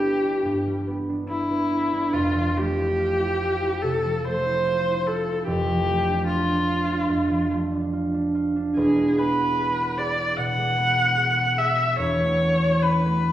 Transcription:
Already playing: G1 G2 G3 B3 D4 G4
0.02 E4
0.24 D4
0.45 G2
0.67 G3
0.87 B3
1.09 D4
1.29 E4
1.51 B3
1.71 E4
1.92 D4
2.12 F1 F2 F4
2.34 F3
2.56 A3 G4
2.78 E4
2.99 F4
3.20 E4
3.42 F4
3.62 E4
3.82 C3 A4
4.05 F3
4.25 A3 C5
4.46 E4
4.67 F4
4.89 E4
5.07 F4 A4
5.28 E4
5.47 F1 F2 G4
5.67 F3
5.86 A3
6.07 D4
6.27 F4
6.49 D4
6.70 F4
6.89 D4
7.09 F2
7.30 F3
7.51 A3
7.71 D4
7.93 F4
8.14 D4
8.35 F4
8.56 D4
8.76 E1 E2 G#4
8.99 G#3
9.19 B3 B4
9.39 F#4
9.59 G#4
9.80 F#4
9.98 G#4 D5
10.18 F#4
10.37 B2 F#5
10.57 G#3
10.77 B3
10.98 F#4
11.17 G#4
11.38 F#4
11.58 G#4 E5
11.79 F#4
11.98 E1 E2 C#5
12.20 A3
12.41 C#4
12.63 F#4
12.83 C#4 B4
13.06 A3
13.27 C#4

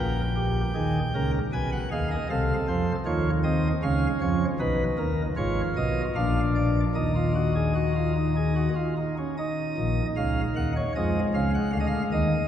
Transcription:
Already playing: A#1 A#2 A#4 G5
0.36 G4
0.75 D#2 D#3 G#4
1.14 C#2 C#3 A#4
1.53 B1 B2 B4 G#5
1.72 F#5
1.91 D#2 D#3 G#4 F5
2.11 D#5
2.30 C2 C3 A4 F5
2.68 F2 F3 C5
3.06 D#2 D#3 F4 C#5
3.44 C4 D#5
3.83 C#2 C#3 C#4 F5
4.21 F2 F3 C#5
4.59 B1 B2 D#4 B4
4.98 D#2 D#3 A#4
5.37 G#1 G#2 F4 C#5
5.76 B1 B2 D#5
6.15 A#1 A#2 D4 F5
6.55 D5
6.95 D#2 D#3 D#4 D#5
7.15 F4
7.35 F#4
7.55 G#4
7.75 F#4
7.95 F4
8.16 D#4
8.36 G#4
8.56 F#4
8.76 F4
8.97 D#4
9.18 C#4
9.38 D#4 D#5
9.77 A#1 A#2
10.17 C#2 C#3 F5
10.56 D#2 D#3 F#5
10.76 C#5
10.96 F2 F3 G#3 D#5
11.34 C#2 C#3 F5
11.54 F#5
11.73 D2 D3 F5
11.80 D#5
11.87 F5
12.12 D#2 D#3 D#5

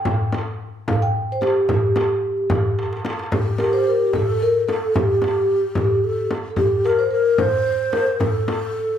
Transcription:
Already playing: G5
0.05 frame drum, darbuka dum
0.33 darbuka tek, frame drum
0.88 F5, frame drum, darbuka dum
1.02 G5
1.32 C5
1.41 G4, darbuka tek, frame drum
1.69 frame drum, darbuka dum
1.96 darbuka tek, frame drum
2.38 darbuka ka
2.50 frame drum, darbuka dum
2.79 darbuka tek
2.93 darbuka ka
3.05 darbuka tek, frame drum
3.19 darbuka ka
3.32 G4, frame drum, darbuka dum
3.58 A#4, darbuka tek, frame drum
3.73 C5
3.87 A#4
4.01 darbuka ka
4.07 G4
4.13 A4, frame drum, darbuka dum
4.42 A#4
4.67 A4, darbuka tek, frame drum
4.95 G4, frame drum, darbuka dum
5.22 darbuka tek, frame drum
5.64 darbuka ka
5.75 frame drum, darbuka dum
6.04 A4
6.31 darbuka tek, frame drum
6.50 A4
6.56 G4, frame drum, darbuka dum
6.85 A#4, darbuka tek
6.99 C5
7.11 A#4
7.25 darbuka ka
7.38 C5, frame drum, darbuka dum
7.66 C5
7.92 A#4, darbuka tek, frame drum
8.20 A4, darbuka dum, frame drum
8.48 darbuka tek, frame drum
8.75 darbuka ka
8.89 darbuka ka

